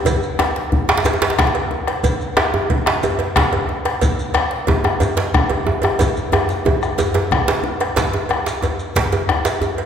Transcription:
0.05 bombo rim soft
0.05 bombo low medium
0.05 cowbell medium
0.05 djembe slap soft
0.05 djembe tone medium
0.05 djembe bass medium
0.05 shekere medium
0.23 shekere soft
0.39 bombo rim medium
0.39 cowbell soft
0.39 djembe slap soft
0.39 djembe slap medium
0.39 djembe tone medium
0.56 djembe slap medium
0.72 bombo low medium
0.72 djembe bass medium
0.89 bombo rim medium
0.89 djembe slap loud
0.98 djembe slap medium
1.05 cowbell medium
1.05 djembe slap medium
1.05 djembe tone medium
1.05 shekere medium
1.13 djembe tone medium
1.22 cowbell medium
1.22 djembe slap medium
1.22 djembe slap loud
1.30 djembe slap medium
1.38 bombo rim loud
1.38 bombo low loud
1.38 djembe slap medium
1.38 djembe bass medium
1.47 djembe tone medium
1.55 bombo rim soft
1.55 cowbell soft
1.71 bombo rim soft
1.71 djembe tone medium
1.87 bombo rim medium
1.87 cowbell soft
1.87 djembe slap medium
2.03 bombo rim soft
2.03 bombo low medium
2.03 cowbell medium
2.03 djembe slap soft
2.03 djembe bass medium
2.03 shekere soft
2.21 shekere soft
2.37 bombo rim loud
2.37 cowbell soft
2.37 djembe slap loud
2.37 djembe slap soft
2.37 djembe tone medium
2.54 djembe slap soft
2.54 djembe tone medium
2.70 bombo low loud
2.70 cowbell soft
2.70 djembe bass medium
2.86 bombo rim medium
2.86 djembe slap loud
3.03 cowbell medium
3.03 djembe tone medium
3.03 shekere medium
3.19 cowbell soft
3.19 djembe slap medium
3.36 bombo rim loud
3.36 bombo low loud
3.36 djembe slap loud
3.36 djembe bass medium
3.53 bombo rim soft
3.53 cowbell soft
3.53 djembe tone medium
3.69 bombo rim soft
3.69 djembe tone medium
3.85 bombo rim medium
3.85 cowbell soft
3.85 djembe slap medium
4.01 bombo rim soft
4.01 bombo low loud
4.01 cowbell medium
4.01 djembe slap soft
4.01 djembe bass medium
4.01 shekere medium
4.19 shekere soft
4.34 bombo rim loud
4.34 cowbell soft
4.34 djembe tone medium
4.51 djembe slap medium
4.67 bombo low medium
4.67 cowbell soft
4.67 djembe tone loud
4.67 djembe bass medium
4.84 bombo rim medium
4.84 djembe tone medium
5.00 cowbell medium
5.00 djembe tone medium
5.00 shekere medium
5.17 cowbell soft
5.17 djembe slap medium
5.34 bombo rim loud
5.34 bombo low loud
5.34 djembe bass medium
5.50 bombo rim soft
5.50 cowbell soft
5.50 djembe tone medium
5.67 bombo rim soft
5.67 djembe tone loud
5.82 bombo rim medium
5.82 cowbell soft
5.82 djembe slap medium
5.82 djembe tone medium
5.99 bombo low medium
5.99 cowbell medium
5.99 djembe slap soft
5.99 djembe tone medium
5.99 djembe bass medium
5.99 shekere medium
6.17 shekere soft
6.32 bombo rim medium
6.32 cowbell soft
6.32 djembe slap soft
6.32 djembe tone medium
6.32 djembe tone loud
6.49 djembe slap soft
6.49 shekere soft
6.65 bombo low loud
6.65 cowbell soft
6.65 djembe slap soft
6.65 djembe tone medium
6.65 djembe bass medium
6.81 bombo rim medium
6.81 djembe slap soft
6.81 shekere soft
6.98 cowbell medium
6.98 djembe tone medium
6.98 djembe tone loud
6.98 shekere medium
7.14 cowbell soft
7.14 djembe slap medium
7.14 djembe tone loud
7.31 bombo rim loud
7.31 bombo low loud
7.31 djembe slap soft
7.31 djembe bass medium
7.48 cowbell medium
7.48 djembe slap soft
7.48 djembe slap loud
7.64 bombo rim soft
7.64 djembe slap soft
7.64 djembe tone medium
7.80 bombo rim medium
7.80 cowbell medium
7.80 djembe slap medium
7.96 bombo low medium
7.96 cowbell medium
7.96 djembe slap medium
7.96 djembe bass medium
7.96 shekere medium
8.13 bombo rim soft
8.13 djembe slap medium
8.13 djembe tone medium
8.29 bombo rim medium
8.29 cowbell soft
8.29 djembe tone medium
8.46 bombo rim soft
8.46 djembe slap medium
8.46 djembe slap soft
8.46 shekere medium
8.62 cowbell soft
8.62 djembe slap soft
8.62 djembe tone medium
8.62 djembe bass medium
8.62 shekere soft
8.79 shekere soft
8.96 bombo low medium
8.96 cowbell soft
8.96 djembe slap loud
8.96 djembe tone medium
8.96 shekere medium
9.12 cowbell soft
9.12 djembe slap medium
9.12 djembe tone medium
9.12 shekere soft
9.29 bombo rim medium
9.29 djembe slap soft
9.29 djembe bass medium
9.45 bombo rim soft
9.45 cowbell soft
9.45 djembe slap medium
9.45 djembe slap soft
9.45 shekere soft
9.61 djembe tone medium
9.61 shekere soft
9.78 bombo rim soft
9.78 cowbell soft

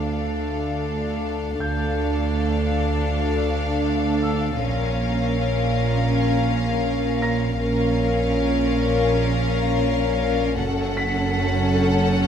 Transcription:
0.00 1.56 D2 medium
0.00 1.56 D2 soft
0.00 1.56 D2 medium
0.00 1.56 D4 soft
0.00 1.56 A4 soft
0.00 1.56 F5 soft
0.00 1.18 E6 soft
1.60 4.61 D2 medium
1.60 4.56 D2 soft
1.60 4.56 D4 soft
1.60 4.56 A4 soft
1.60 4.56 F5 soft
1.60 3.81 G6 soft
4.23 6.43 E6 soft
4.59 7.55 A#1 soft
4.59 7.59 A#1 medium
4.59 7.55 A#2 soft
4.59 7.55 C#4 soft
4.59 7.57 A#4 soft
4.59 7.55 F5 soft
7.22 9.43 A#5 soft
7.22 9.43 A#6 medium
7.59 10.55 A#1 medium
7.59 10.61 A#1 medium
7.59 10.55 A#2 medium
7.59 10.56 C#4 soft
7.59 10.55 A#4 soft
7.59 10.55 F5 medium
10.59 12.27 F#1 medium
10.59 12.27 F#2 medium
10.59 12.27 C#4 medium
10.59 12.27 A4 medium
10.59 12.27 F#5 medium
10.97 12.27 B6 medium

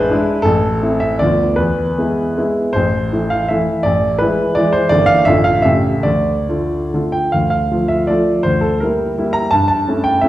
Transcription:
0.00 0.13 A1 medium
0.00 0.11 G#3 medium
0.00 0.11 D4 soft
0.00 0.11 E4 medium
0.00 0.44 B4 loud
0.00 0.13 C5 loud
0.11 0.41 G#3 medium
0.11 0.41 D4 medium
0.11 0.42 E4 medium
0.42 0.81 A1 medium
0.42 1.00 A4 loud
0.82 1.17 A3 medium
0.82 1.17 C4 soft
0.82 1.17 E4 medium
1.00 1.20 E5 loud
1.19 1.58 D2 medium
1.19 1.55 B3 soft
1.19 1.55 F4 soft
1.19 1.58 D5 loud
1.56 1.97 E2 medium
1.56 2.36 B4 medium
1.98 2.34 G#3 soft
1.98 2.34 B3 soft
1.98 2.34 E4 soft
2.37 2.71 G#3 soft
2.37 2.72 B3 soft
2.37 2.72 E4 medium
2.73 3.12 A1 medium
2.73 3.31 C5 medium
3.13 3.47 E3 soft
3.13 3.47 A3 soft
3.13 3.47 E4 soft
3.30 3.50 F5 medium
3.48 3.82 E3 medium
3.48 3.83 A3 soft
3.48 3.83 E4 medium
3.48 3.85 E5 medium
3.83 4.20 A1 medium
3.83 4.20 D5 loud
4.18 4.54 E3 soft
4.18 4.54 G#3 soft
4.18 4.54 E4 medium
4.18 4.56 B4 medium
4.55 4.88 E3 medium
4.55 4.89 G#3 medium
4.55 4.89 E4 medium
4.55 4.74 D5 loud
4.72 4.91 C5 loud
4.89 5.26 G1 medium
4.89 5.24 E3 medium
4.89 5.24 A#3 medium
4.89 5.24 E4 soft
4.89 5.08 D5 loud
5.06 5.26 F5 loud
5.25 5.63 A1 medium
5.25 5.62 D3 medium
5.25 5.62 A3 medium
5.25 5.63 F4 soft
5.25 5.46 E5 loud
5.44 5.65 F5 loud
5.62 6.04 A1 medium
5.62 6.01 C#3 soft
5.62 6.02 A3 soft
5.62 6.02 G4 soft
5.62 6.04 E5 loud
6.03 6.48 D2 medium
6.03 6.92 D5 medium
6.49 6.89 D3 soft
6.49 6.89 A3 soft
6.49 6.90 F4 soft
6.94 7.30 D3 soft
6.94 7.30 A3 soft
6.94 7.31 F4 soft
7.12 7.33 G5 medium
7.32 7.70 D2 medium
7.32 7.49 F5 medium
7.50 7.89 F5 medium
7.71 8.05 F3 soft
7.71 8.06 A3 soft
7.71 8.06 F4 soft
7.88 8.08 E5 medium
8.07 8.42 F3 soft
8.07 8.42 A3 soft
8.07 8.42 F4 medium
8.07 8.44 D5 medium
8.43 8.81 D2 medium
8.43 8.62 C5 medium
8.61 8.80 A4 medium
8.80 9.15 G3 soft
8.80 9.15 A#3 soft
8.80 9.15 E4 soft
8.80 9.17 A#4 medium
9.18 9.49 G3 medium
9.18 9.50 A#3 soft
9.18 9.50 E4 medium
9.33 9.51 A#5 medium
9.51 9.87 G2 medium
9.51 9.66 A5 loud
9.68 10.05 A5 loud
9.88 10.20 A3 soft
9.88 10.20 C#4 soft
9.88 10.20 E4 soft
10.04 10.22 G5 medium
10.21 10.29 A3 soft
10.21 10.29 C#4 medium
10.21 10.29 E4 medium
10.21 10.29 E5 medium

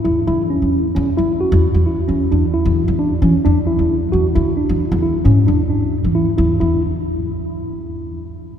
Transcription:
0.04 0.24 E2 medium
0.04 0.18 E4 medium
0.27 0.57 E2 medium
0.27 0.41 E4 loud
0.50 0.77 C#4 medium
0.62 0.81 E2 medium
0.95 1.05 E2 loud
0.95 1.09 C#4 medium
1.17 1.38 E2 medium
1.17 1.31 E4 medium
1.41 1.68 F#4 medium
1.52 1.71 E2 loud
1.74 1.94 E2 medium
1.86 2.00 E4 medium
2.08 2.18 E2 medium
2.08 2.22 C#4 medium
2.31 2.51 E2 medium
2.31 2.45 D4 medium
2.54 2.81 E4 medium
2.66 2.85 E2 medium
2.88 3.07 E2 medium
2.99 3.13 D4 medium
3.22 3.31 E3 medium
3.22 3.35 C#4 medium
3.45 3.74 E2 medium
3.45 3.58 D4 medium
3.67 3.94 E4 medium
3.79 4.08 E2 medium
4.12 4.32 E2 medium
4.12 4.26 F#4 medium
4.35 4.54 D2 medium
4.35 4.49 E4 medium
4.57 4.84 D4 medium
4.69 4.79 E3 medium
4.92 5.11 E2 loud
5.02 5.16 E4 medium
5.25 5.44 G#2 medium
5.25 5.38 C#4 medium
5.47 5.81 E2 medium
5.47 5.61 D4 medium
5.70 5.97 D4 medium
5.81 5.91 D2 medium
6.04 6.24 E3 medium
6.15 6.29 E4 medium
6.38 6.57 E2 medium
6.38 6.51 E4 medium
6.60 6.82 E2 medium
6.60 6.81 E4 medium

